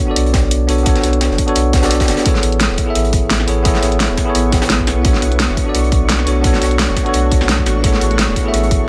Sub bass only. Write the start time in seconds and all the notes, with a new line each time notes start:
0.16 B1
0.43 B1
0.69 B1
1.04 B1
1.30 F#1
1.56 B1
1.83 B1
2.08 F#1
2.43 A1
2.70 E1
2.95 A1
3.22 A1
3.48 A1
3.83 A1
4.09 E1
4.35 A1
4.62 A1
4.87 B1
5.22 B1
5.49 F#1
5.74 B1
6.01 B1
6.27 B1
6.62 B1
6.89 F#1
7.14 B1
7.41 B1
7.67 A1
8.01 A1
8.28 E1
8.54 A1
8.80 A1